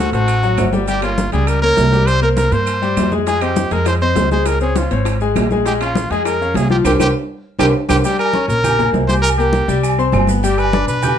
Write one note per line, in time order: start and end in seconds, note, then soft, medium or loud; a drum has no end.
0.00 0.13 F#4 loud
0.12 0.55 A1 medium
0.12 0.38 A3 medium
0.12 0.69 F#4 loud
0.12 0.38 A4 medium
0.12 0.38 C5 medium
0.12 high timbale medium
0.12 maracas soft
0.28 high conga soft
0.28 high timbale medium
0.28 claves medium
0.28 maracas medium
0.43 0.68 F#3 medium
0.43 0.68 F#4 medium
0.43 0.68 F#5 medium
0.43 high conga soft
0.43 maracas soft
0.57 1.27 G1 medium
0.57 high conga medium
0.57 high timbale medium
0.57 low timbale medium
0.57 claves medium
0.57 maracas medium
0.73 0.85 G3 medium
0.73 0.85 G4 medium
0.73 0.85 G5 medium
0.73 high conga medium
0.73 maracas soft
0.88 1.00 G3 medium
0.88 1.02 G4 loud
0.88 1.00 G4 medium
0.88 1.01 G5 medium
0.88 high timbale medium
0.88 maracas medium
1.02 1.27 A#3 medium
1.02 1.31 F4 medium
1.02 1.27 A#4 medium
1.02 1.28 C#5 medium
1.02 high conga soft
1.02 high timbale loud
1.02 claves medium
1.02 maracas soft
1.18 high conga medium
1.18 low timbale medium
1.18 maracas medium
1.32 1.74 C#2 medium
1.32 1.57 G3 medium
1.32 1.57 G4 medium
1.32 1.49 G#4 medium
1.32 1.58 G5 medium
1.32 high conga soft
1.32 high timbale medium
1.32 maracas soft
1.47 1.61 A#4 medium
1.47 high conga soft
1.47 high timbale medium
1.47 claves medium
1.47 maracas medium
1.62 1.87 A#3 medium
1.62 2.08 A#4 loud
1.62 1.87 A#4 medium
1.62 1.87 C#5 medium
1.62 high conga soft
1.62 maracas soft
1.77 2.47 C2 loud
1.77 high conga medium
1.77 high timbale medium
1.77 low timbale medium
1.77 maracas medium
1.92 2.17 G3 medium
1.92 2.17 G4 medium
1.92 2.17 G5 medium
1.92 high conga medium
1.92 maracas soft
2.07 2.22 C5 loud
2.07 high timbale medium
2.07 claves medium
2.07 maracas medium
2.22 2.47 A#3 medium
2.22 2.47 A#4 medium
2.22 2.29 A#4 medium
2.22 2.47 C5 medium
2.22 high conga soft
2.22 maracas soft
2.37 2.54 A#4 medium
2.37 high conga medium
2.37 high timbale medium
2.37 low timbale medium
2.37 maracas medium
2.52 2.94 G2 medium
2.52 2.77 A#3 medium
2.52 2.77 A#4 medium
2.52 3.12 C5 loud
2.52 2.77 C5 medium
2.52 high conga soft
2.52 high timbale medium
2.52 maracas soft
2.66 high conga soft
2.66 high timbale medium
2.66 claves medium
2.66 maracas medium
2.82 3.07 G3 medium
2.82 3.07 G4 medium
2.82 3.07 G5 medium
2.82 high conga soft
2.82 maracas soft
2.97 3.66 F2 medium
2.97 high conga medium
2.97 high timbale medium
2.97 low timbale medium
2.97 claves medium
2.97 maracas medium
3.12 3.24 G#3 medium
3.12 3.24 G#4 medium
3.12 3.25 G#5 medium
3.12 high conga medium
3.12 maracas soft
3.27 3.40 G#3 medium
3.27 3.44 G#4 loud
3.27 3.40 G#4 medium
3.27 3.40 G#5 medium
3.27 high bongo medium
3.27 high conga soft
3.27 high timbale medium
3.27 maracas medium
3.41 3.66 C4 medium
3.41 3.74 G4 medium
3.41 3.66 C5 medium
3.41 3.67 D#5 medium
3.41 high bongo soft
3.41 high conga soft
3.41 high timbale medium
3.41 claves medium
3.41 maracas soft
3.56 high bongo medium
3.56 high conga medium
3.56 low timbale medium
3.56 maracas medium
3.71 4.13 F2 medium
3.71 3.96 G#3 medium
3.71 3.96 G#4 medium
3.71 3.87 A#4 medium
3.71 3.96 G#5 medium
3.71 high bongo soft
3.71 high conga soft
3.71 high timbale medium
3.71 maracas soft
3.86 3.94 C5 medium
3.86 high bongo medium
3.86 high conga soft
3.86 high timbale medium
3.86 claves medium
3.86 maracas medium
4.01 4.26 C4 medium
4.01 4.26 C5 medium
4.01 4.30 C5 medium
4.01 4.26 D#5 medium
4.01 high conga soft
4.01 maracas soft
4.16 4.85 C#2 medium
4.16 high bongo soft
4.16 low bongo medium
4.16 high conga medium
4.16 high timbale medium
4.16 low timbale medium
4.16 maracas medium
4.31 4.56 G#3 medium
4.31 4.56 G#4 medium
4.31 4.49 C5 medium
4.31 4.56 G#5 medium
4.31 high bongo soft
4.31 high conga medium
4.31 maracas soft
4.46 4.61 A#4 medium
4.46 high bongo medium
4.46 high conga soft
4.46 high timbale medium
4.46 claves medium
4.46 maracas medium
4.60 4.86 C4 medium
4.60 4.79 G#4 medium
4.60 4.86 C5 medium
4.60 4.86 C#5 medium
4.60 high bongo soft
4.60 high conga soft
4.60 maracas soft
4.76 4.92 F4 medium
4.76 high bongo medium
4.76 high conga medium
4.76 high timbale medium
4.76 low timbale medium
4.76 maracas medium
4.91 5.33 G#1 medium
4.91 5.15 C4 medium
4.91 5.16 C5 medium
4.91 5.16 C#5 medium
4.91 high bongo soft
4.91 high conga soft
4.91 high timbale medium
4.91 maracas soft
5.05 high bongo medium
5.05 high conga soft
5.05 high timbale medium
5.05 claves medium
5.05 maracas medium
5.21 5.46 G#3 medium
5.21 5.46 G#4 medium
5.21 5.46 G#5 medium
5.21 high conga soft
5.21 maracas soft
5.36 6.05 A#1 medium
5.36 high bongo soft
5.36 low bongo medium
5.36 high conga medium
5.36 high timbale medium
5.36 low timbale medium
5.36 claves medium
5.36 maracas medium
5.51 5.64 G#3 medium
5.51 5.64 G#4 medium
5.51 5.64 G#5 medium
5.51 high bongo soft
5.51 high conga medium
5.51 maracas soft
5.66 5.78 G#3 medium
5.66 5.73 G4 medium
5.66 5.79 G#4 medium
5.66 5.79 G#5 medium
5.66 high bongo medium
5.66 high conga soft
5.66 high timbale medium
5.66 maracas medium
5.80 6.05 C#4 medium
5.80 6.13 F4 medium
5.80 6.06 C#5 medium
5.80 6.06 F5 medium
5.80 high bongo soft
5.80 high conga soft
5.80 high timbale medium
5.80 claves medium
5.80 maracas soft
5.95 high bongo medium
5.95 high conga medium
5.95 low timbale medium
5.95 maracas medium
6.10 6.52 F2 medium
6.10 6.36 G#3 medium
6.10 6.25 G#4 medium
6.10 6.36 G#4 medium
6.10 6.36 G#5 medium
6.10 high bongo soft
6.10 high conga soft
6.10 high timbale medium
6.10 maracas soft
6.25 6.58 A#4 medium
6.25 high bongo medium
6.25 high conga soft
6.25 high timbale medium
6.25 claves medium
6.25 maracas medium
6.40 6.65 C#4 medium
6.40 6.65 C#5 medium
6.40 6.66 F5 medium
6.40 high conga soft
6.40 maracas soft
6.54 6.83 C2 medium
6.54 6.70 G#4 medium
6.54 high bongo soft
6.54 low bongo medium
6.54 high conga medium
6.54 high timbale medium
6.54 low timbale medium
6.54 maracas medium
6.70 6.83 F3 medium
6.70 6.83 F4 medium
6.70 6.77 G4 medium
6.70 6.83 F5 medium
6.70 high bongo soft
6.70 high conga medium
6.70 maracas soft
6.84 6.96 C2 medium
6.84 6.95 G4 loud
6.84 6.93 G4 medium
6.84 6.95 A#4 loud
6.84 6.95 C5 medium
6.84 high bongo medium
6.84 high conga medium
6.84 high timbale loud
6.84 claves medium
6.84 maracas loud
6.99 7.11 C2 medium
6.99 7.10 G4 loud
6.99 7.08 G4 loud
6.99 7.10 A#4 medium
6.99 7.10 C5 medium
6.99 high bongo medium
6.99 high conga medium
6.99 high timbale loud
6.99 claves loud
6.99 maracas loud
7.59 7.71 C2 loud
7.59 7.67 G4 medium
7.59 7.69 G4 loud
7.59 7.69 A#4 loud
7.59 7.69 C5 medium
7.59 high bongo medium
7.59 high conga medium
7.59 high timbale loud
7.59 claves loud
7.59 maracas loud
7.89 8.00 C2 medium
7.89 7.99 G4 medium
7.89 7.97 G4 medium
7.89 7.99 A#4 medium
7.89 7.99 C5 medium
7.89 high bongo loud
7.89 high conga loud
7.89 high timbale loud
7.89 claves medium
7.89 maracas loud
8.04 8.29 G3 medium
8.04 8.29 G4 medium
8.04 8.19 G4 medium
8.04 8.29 G5 medium
8.04 low agogo medium
8.04 maracas loud
8.19 8.47 A#4 loud
8.19 high conga soft
8.19 low agogo loud
8.19 claves medium
8.19 maracas soft
8.33 8.59 C#4 medium
8.33 8.59 C#5 medium
8.33 8.59 C#6 medium
8.33 high conga loud
8.33 maracas soft
8.48 8.90 A#1 medium
8.48 8.90 A#4 loud
8.48 high conga soft
8.48 maracas medium
8.64 8.76 G4 medium
8.64 8.76 G5 medium
8.64 8.77 G6 medium
8.64 high conga soft
8.64 low conga medium
8.64 low agogo loud
8.64 claves medium
8.64 maracas medium
8.78 9.03 A#3 medium
8.78 9.03 A#4 medium
8.78 9.04 A#5 medium
8.78 high conga soft
8.78 low conga medium
8.78 low agogo loud
8.78 maracas soft
8.93 9.63 C2 medium
8.93 high conga medium
8.93 low timbale medium
8.93 maracas soft
9.08 9.33 G4 medium
9.08 9.15 C5 medium
9.08 9.33 G5 medium
9.08 9.34 G6 medium
9.08 high conga medium
9.08 low agogo medium
9.08 maracas medium
9.22 9.29 A#4 loud
9.22 low agogo loud
9.22 claves medium
9.22 maracas loud
9.38 9.63 A#3 medium
9.38 9.80 G4 medium
9.38 9.63 A#4 medium
9.38 9.63 A#5 medium
9.38 high conga soft
9.38 maracas soft
9.53 high conga loud
9.53 low agogo medium
9.53 maracas soft
9.68 10.10 C2 medium
9.68 9.93 G3 medium
9.68 9.93 G4 medium
9.68 9.93 G5 medium
9.68 maracas medium
9.83 high conga soft
9.83 low agogo loud
9.83 claves medium
9.83 maracas medium
9.98 10.23 C4 medium
9.98 10.23 C5 medium
9.98 10.23 C6 medium
9.98 high conga soft
9.98 maracas soft
10.12 10.82 G1 loud
10.12 high conga medium
10.12 low timbale medium
10.12 low agogo loud
10.12 claves medium
10.12 maracas soft
10.27 10.41 B3 medium
10.27 10.41 B4 medium
10.27 10.41 B5 medium
10.27 high conga medium
10.27 maracas medium
10.43 10.68 G3 medium
10.43 10.60 G4 medium
10.43 10.68 G4 medium
10.43 10.68 G5 medium
10.43 high conga soft
10.43 low agogo medium
10.43 maracas loud
10.58 10.88 B4 loud
10.58 high conga soft
10.58 low agogo loud
10.58 claves medium
10.58 maracas soft
10.73 10.97 D4 medium
10.73 10.98 D5 medium
10.73 10.98 D6 medium
10.73 high conga loud
10.73 maracas soft
10.87 11.19 B1 medium
10.87 11.19 B4 loud
10.87 high conga soft
10.87 maracas medium
11.03 11.15 G4 medium
11.03 11.15 G5 medium
11.03 11.15 G6 medium
11.03 high conga soft
11.03 low conga medium
11.03 low agogo loud
11.03 claves medium
11.03 maracas medium